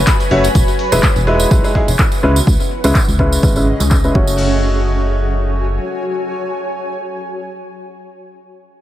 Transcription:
0.00 1.19 F#4 medium
0.00 4.15 B4 medium
0.00 1.23 C#5 medium
0.00 1.23 G#5 medium
0.00 4.15 B5 medium
0.07 kick loud
0.07 clap loud
0.07 closed hi-hat medium
0.07 tambourine medium
0.20 closed hi-hat soft
0.20 tambourine soft
0.31 0.48 F#1 medium
0.31 0.44 A3 medium
0.31 0.44 C#4 medium
0.31 0.44 F#4 medium
0.31 0.44 C#5 loud
0.31 open hi-hat medium
0.44 closed hi-hat soft
0.44 tambourine medium
0.55 0.64 E1 loud
0.55 3.10 E4 medium
0.55 kick loud
0.55 closed hi-hat medium
0.55 tambourine medium
0.63 3.05 B4 medium
0.68 closed hi-hat soft
0.68 tambourine soft
0.79 open hi-hat loud
0.92 1.00 E1 medium
0.92 1.03 G#3 loud
0.92 1.03 D#4 medium
0.92 1.03 E4 medium
0.92 1.03 B4 loud
0.92 closed hi-hat soft
0.92 tambourine medium
1.03 kick loud
1.03 clap loud
1.03 closed hi-hat medium
1.03 tambourine medium
1.16 1.46 E1 loud
1.16 closed hi-hat soft
1.16 tambourine soft
1.23 1.48 G#3 medium
1.23 1.48 D#4 medium
1.23 1.48 E4 medium
1.23 1.48 B4 medium
1.23 3.10 F#5 medium
1.23 open hi-hat medium
1.40 closed hi-hat soft
1.40 tambourine medium
1.51 1.60 B1 medium
1.51 1.61 G#3 medium
1.51 1.61 D#4 medium
1.51 1.61 E4 medium
1.51 1.61 B4 medium
1.51 kick loud
1.51 closed hi-hat medium
1.51 tambourine medium
1.64 1.73 G#3 medium
1.64 1.73 D#4 medium
1.64 1.73 E4 medium
1.64 1.73 B4 medium
1.64 closed hi-hat soft
1.64 tambourine soft
1.75 1.88 G#3 medium
1.75 1.88 D#4 medium
1.75 1.88 E4 medium
1.75 1.88 G#4 medium
1.75 kick medium
1.75 open hi-hat loud
1.88 1.96 E1 loud
1.88 closed hi-hat soft
1.88 tambourine medium
1.99 kick loud
1.99 clap loud
1.99 closed hi-hat medium
1.99 tambourine medium
2.12 closed hi-hat soft
2.12 tambourine soft
2.23 2.40 C#2 medium
2.23 2.36 C#3 medium
2.23 2.36 G#3 medium
2.23 2.36 C#4 medium
2.23 4.15 C#4 medium
2.23 2.36 E4 medium
2.23 2.36 B4 loud
2.23 open hi-hat medium
2.36 closed hi-hat soft
2.36 tambourine medium
2.47 2.56 C#2 loud
2.47 kick loud
2.47 closed hi-hat medium
2.47 tambourine medium
2.54 4.15 D#5 medium
2.59 4.15 G#4 medium
2.59 closed hi-hat soft
2.59 tambourine soft
2.71 open hi-hat loud
2.84 2.92 C#2 medium
2.84 2.95 C#3 medium
2.84 2.95 G#3 medium
2.84 2.95 C#4 medium
2.84 2.95 E4 medium
2.84 2.95 B4 loud
2.84 closed hi-hat soft
2.84 tambourine medium
2.95 kick loud
2.95 clap loud
2.95 closed hi-hat medium
2.95 tambourine medium
3.08 3.38 C#2 medium
3.08 closed hi-hat soft
3.08 tambourine soft
3.19 3.40 C#3 medium
3.19 3.40 G#3 medium
3.19 3.40 C#4 medium
3.19 3.40 E4 medium
3.19 3.40 B4 medium
3.19 kick medium
3.19 open hi-hat medium
3.32 closed hi-hat soft
3.32 tambourine medium
3.43 3.74 G#1 medium
3.43 3.53 C#3 medium
3.43 3.53 G#3 medium
3.43 3.53 C#4 medium
3.43 3.53 E4 medium
3.43 3.53 B4 medium
3.43 kick loud
3.43 tambourine medium
3.56 3.65 C#3 medium
3.56 3.65 G#3 medium
3.56 3.65 C#4 medium
3.56 3.65 E4 medium
3.56 3.65 B4 medium
3.56 closed hi-hat soft
3.56 tambourine soft
3.67 open hi-hat loud
3.80 4.10 C#2 medium
3.80 clap soft
3.80 closed hi-hat soft
3.80 tambourine medium
3.91 kick loud
3.91 clap loud
3.91 tambourine medium
4.04 4.13 C#3 medium
4.04 4.13 G#3 medium
4.04 4.13 C#4 medium
4.04 4.13 E4 medium
4.04 4.13 B4 medium
4.04 closed hi-hat soft
4.04 tambourine soft
4.15 5.79 F#1 medium
4.15 7.40 A3 medium
4.15 7.40 C#4 medium
4.15 7.40 F#4 medium
4.15 7.40 C#5 medium
4.15 kick loud
4.15 crash medium
4.23 7.48 C#5 medium
4.27 tambourine medium
4.54 7.79 G#5 medium

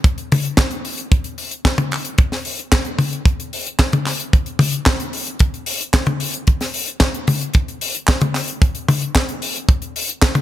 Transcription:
0.04 kick loud
0.04 closed hi-hat medium
0.18 closed hi-hat medium
0.32 open hi-hat loud
0.32 high tom medium
0.45 closed hi-hat medium
0.57 kick loud
0.57 snare loud
0.57 clap loud
0.57 closed hi-hat medium
0.71 closed hi-hat medium
0.85 open hi-hat loud
0.98 closed hi-hat medium
1.12 kick loud
1.12 closed hi-hat medium
1.24 closed hi-hat medium
1.38 open hi-hat loud
1.51 closed hi-hat medium
1.65 kick loud
1.65 snare loud
1.65 clap medium
1.65 closed hi-hat medium
1.78 closed hi-hat medium
1.78 high tom medium
1.92 clap medium
1.92 open hi-hat loud
2.05 closed hi-hat medium
2.18 kick loud
2.18 closed hi-hat medium
2.32 snare soft
2.32 open hi-hat medium
2.45 open hi-hat loud
2.59 closed hi-hat medium
2.72 kick loud
2.72 snare loud
2.72 clap medium
2.72 closed hi-hat medium
2.85 closed hi-hat medium
2.99 open hi-hat medium
2.99 high tom medium
3.13 closed hi-hat medium
3.25 kick loud
3.25 closed hi-hat medium
3.40 closed hi-hat medium
3.53 open hi-hat loud
3.67 closed hi-hat medium
3.79 kick loud
3.79 snare loud
3.79 clap medium
3.79 closed hi-hat medium
3.92 closed hi-hat soft
3.92 high tom medium
4.06 snare soft
4.06 clap soft
4.06 open hi-hat loud
4.20 closed hi-hat medium
4.33 kick loud
4.33 closed hi-hat medium
4.46 closed hi-hat medium
4.59 open hi-hat loud
4.59 high tom medium
4.73 closed hi-hat medium
4.86 kick loud
4.86 snare loud
4.86 clap medium
4.86 closed hi-hat medium
5.00 closed hi-hat medium
5.13 open hi-hat loud
5.27 closed hi-hat soft
5.39 kick loud
5.39 closed hi-hat medium
5.54 closed hi-hat soft
5.66 open hi-hat loud
5.81 closed hi-hat medium
5.94 kick loud
5.94 snare loud
5.94 clap medium
5.94 closed hi-hat medium
6.06 closed hi-hat medium
6.06 high tom medium
6.20 open hi-hat loud
6.33 closed hi-hat medium
6.47 kick loud
6.47 closed hi-hat medium
6.61 snare soft
6.61 open hi-hat medium
6.74 open hi-hat loud
6.88 closed hi-hat soft
7.00 kick medium
7.00 snare loud
7.00 clap medium
7.00 closed hi-hat medium
7.14 closed hi-hat medium
7.27 open hi-hat loud
7.27 high tom medium
7.41 closed hi-hat medium
7.54 kick loud
7.54 closed hi-hat medium
7.68 closed hi-hat medium
7.81 open hi-hat loud
7.95 closed hi-hat medium
8.07 kick loud
8.07 snare loud
8.07 clap loud
8.07 closed hi-hat medium
8.21 closed hi-hat medium
8.21 high tom medium
8.35 snare soft
8.35 clap soft
8.35 open hi-hat loud
8.48 closed hi-hat medium
8.62 kick loud
8.62 closed hi-hat medium
8.75 closed hi-hat medium
8.88 open hi-hat loud
8.88 high tom medium
9.01 closed hi-hat medium
9.15 kick medium
9.15 snare loud
9.15 clap medium
9.15 closed hi-hat medium
9.29 closed hi-hat medium
9.42 open hi-hat loud
9.56 closed hi-hat medium
9.69 kick loud
9.69 closed hi-hat medium
9.82 closed hi-hat medium
9.96 open hi-hat loud
10.09 closed hi-hat medium
10.22 kick loud
10.22 snare loud
10.22 clap loud
10.22 closed hi-hat medium
10.35 closed hi-hat medium
10.35 high tom medium

